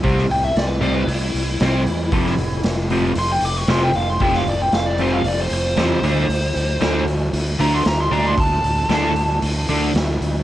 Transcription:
<<
  \new Staff \with { instrumentName = "Lead electric guitar" } { \time 4/4 \key d \dorian \tempo 4 = 115 r8 g''16 e''16 d''16 b'16 d''16 b'16 e'2~ | e'4 r4 c'''16 g''16 d'''16 cis'''16 c'''16 g''16 f''16 c'''16 | g''16 f''16 d''16 g''16 f''16 d''16 c''16 f''16 d''16 c''16 c''4.~ | c''4. r4 bes''16 c'''16 bes''16 c'''16 bes''16 c'''16 |
a''2 r2 | }
  \new Staff \with { instrumentName = "Overdriven electric guitar" } { \clef bass \time 4/4 \key d \dorian <c g c'>8 r4 <c g c'>8 r4 <c g c'>8 r8 | <f, c f>8 r4 <f, c f>8 r4 <f, c f>8 r8 | <f, c f>8 r4 <f, c f>8 r4 <f, c f>8 <d a d'>8 | r4 <d a d'>8 r4 <d a d'>8 r8 <d a d'>8 |
r4 <d a d'>8 r4 <d a d'>8 r4 | }
  \new Staff \with { instrumentName = "Fingered electric bass" } { \clef bass \time 4/4 \key d \dorian c,8 c,8 c,4 c,8 c,8 c,8 e,8 | f,,8 f,,8 f,,4 f,,8 f,,8 f,,8 f,,8 | f,,8 f,,8 f,,4 f,,8 f,,8 e,8 d,8 | d,8 d,8 d,4 d,8 d,8 d,8 d,8 |
d,8 d,8 d,4 d,8 d,8 d,8 d,8 | }
  \new DrumStaff \with { instrumentName = "Drums" } \drummode { \time 4/4 <hho bd>16 sn16 hho8 <hho sn>8 hho8 hho8 hho8 <hho sn>8 hho8 | <hho bd>16 sn16 hho8 <hho sn>8 hho8 hho8 hho8 <hho sn>8 hho8 | <hho bd>16 sn16 hho8 <hho sn>8 hho8 hho8 hho8 <hho sn>8 hho8 | hho8 hho8 <hho sn>8 hho8 hho8 hho8 <hho sn>8 hho8 |
<hho bd>8 hho8 <hho sn>8 hho8 hho8 hho8 <hho sn>8 hho8 | }
>>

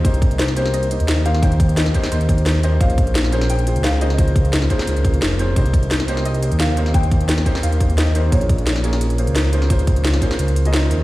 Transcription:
<<
  \new Staff \with { instrumentName = "Synth pluck" } { \time 4/4 \key c \phrygian \tempo 4 = 174 r4 c''4 ees''4. f''8 | g''4 ees''4 c''4. ees''8 | f''2 g''4 f''8 ees''8~ | ees''4. r2 r8 |
r4 c''4 ees''4 f''4 | g''2 f''4 ees''4 | des''2. r4 | r1 | }
  \new Staff \with { instrumentName = "Felt piano" } { \time 4/4 \key c \phrygian <bes c' ees' g' c''>4. <bes c' ees' g' c''>4 <bes c' ees' g' c''>4 <bes c' ees' g' c''>8 | <bes c' ees' g' c''>4. <bes c' ees' g' c''>4 <bes c' ees' g' c''>4 <bes c' ees' g' c''>8 | <bes des' f' aes' c''>4. <bes des' f' aes' c''>4 <bes des' f' aes' c''>4 <bes des' f' aes' c''>8 | <bes des' f' aes' c''>4. <bes des' f' aes' c''>4 <bes des' f' aes' c''>4 <bes des' f' aes' c''>8 |
<bes c' ees' g' c''>4. <bes c' ees' g' c''>4 <bes c' ees' g' c''>4 <bes c' ees' g' c''>8 | <bes c' ees' g' c''>4. <bes c' ees' g' c''>4 <bes c' ees' g' c''>4 <bes c' ees' g' c''>8 | <bes des' f' aes' des''>4. <bes des' f' aes' des''>4 <bes des' f' aes' c''>4 <bes des' f' aes' c''>8 | <bes des' f' aes' c''>4. <bes des' f' aes' c''>4 r16 <bes des' f' aes' ees''>16 <bes des' f' aes' c''>16 r8. | }
  \new Staff \with { instrumentName = "Detuned saw bass" } { \clef bass \time 4/4 \key c \phrygian c,2~ c,8. ees,4~ ees,16~ | ees,4. r8 ees,2 | bes,,2~ bes,,8. des,4~ des,16~ | des,4. r8 des,4 f,,4 |
c,2~ c,8. ees,4~ ees,16~ | ees,4. r8 ees,2 | bes,,2~ bes,,8. des,4~ des,16~ | des,4. r8 des,4. ees,8 | }
  \new DrumStaff \with { instrumentName = "Drums" } \drummode { \time 4/4 <hh bd>16 hh16 <hh bd>16 hh16 <hh sn>16 sn16 hh16 sn16 hh16 hh16 hh16 hh16 <hh sn>8 hh16 sn16 | <hh bd>16 hh16 <hh bd>16 hh16 <hh sn>16 sn16 <hh bd>16 sn16 hh16 hh16 <hh bd>16 hh16 <hh sn>8 hh8 | <hh bd>16 hh16 <hh bd>16 hh16 <hh sn>16 sn16 hh16 sn16 hh16 hh16 hh16 hh16 <hh sn>8 hh16 sn16 | <hh bd>16 hh16 <hh bd>16 hh16 <hh sn>16 sn16 <hh bd>16 sn16 hh16 hh16 <hh bd>16 hh16 <hh sn>8 hh8 |
<hh bd>16 hh16 <hh bd>16 hh16 <hh sn>16 sn16 hh16 sn16 hh16 hh16 hh16 hh16 <hh sn>8 hh16 sn16 | <hh bd>16 hh16 <hh bd>16 hh16 <hh sn>16 sn16 <hh bd>16 sn16 hh16 hh16 <hh bd>16 hh16 <hh sn>8 hh8 | <hh bd>16 hh16 <hh bd>16 hh16 <hh sn>16 sn16 hh16 sn16 hh16 hh16 hh16 hh16 <hh sn>8 hh16 sn16 | <hh bd>16 hh16 <hh bd>16 hh16 <hh sn>16 sn16 <hh bd>16 sn16 hh16 hh16 hh16 hh16 <hh sn>8 hh8 | }
>>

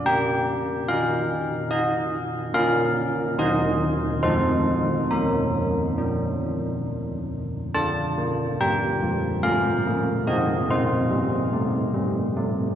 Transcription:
<<
  \new Staff \with { instrumentName = "Church bells" } { \time 3/4 \key bes \major \tempo 4 = 72 << { g''4 f''4 ees''4 | f''4 ees''4 c''4 | bes'2 r4 | a''4 g''4 f''4 |
ees''8 c''2~ c''8 | } \\ { r2. | r2. | r2. | f'2. |
f'2. | } >> }
  \new Staff \with { instrumentName = "Church bells" } { \time 3/4 \key bes \major bes4 ees'2 | <bes d' bes'>4 <ees ees' c''>4 <f ees' a'>4 | bes4 d'2 | d'8 bes8 g8 f8 a8 bes8 |
c'8 bes8 g8 a8 g8 a8 | }
>>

